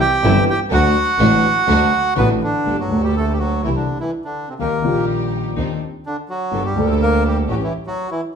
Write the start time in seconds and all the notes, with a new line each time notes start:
0.00 G4 G5
0.23 G1 G2 E3 G3 C4 E4 G4
0.50 G4 G5
0.71 D2 D3 F#3 A3 D4 F#4 F#5
1.19 A1 A2 D3 F#3 A3 D4 F#4
1.68 D2 D3 F#3 A3 D4 F#4
2.16 A1 A2 D3 F#3 A3 B3 D4 F#4 B4
2.43 D3 D4
2.65 G1 G2 D3 A3 A#3 G4 A4
2.80 F#3 F#4
2.89 D2 D3 A3 A#3 G4 A4
2.94 G4
3.04 G3 G4
3.17 A3 A4
3.32 G4
3.39 F#3 F#4
3.63 C2 C3 E3 A#3 C4 E4 G4 A#4
3.75 D3 D4
4.00 E3 E4
4.25 D3 D4
4.48 C3 C4
4.59 D#2 D#3 G3 A#3 D#4 G4 A#4
4.82 A#1 A#2 D#3 G3 A#3 D#4 G4
4.86 G4
5.56 D#2 D#3 C4 D4 D#4 G4
6.06 D3 D4
6.29 F#3 F#4
6.51 G1 G2 G3 A#3 D4 G4 A4
6.65 G3 G4
6.75 D2 D3 G3 A#3 D4 G4 A4
6.85 A#4
6.90 A3 A4
7.02 A#3 A#4
7.27 G3 G4
7.48 A1 A2 E3 F#3 A3 C#4 F#4 G4
7.63 E3 E4
7.86 F#3 F#4
8.11 E3 E4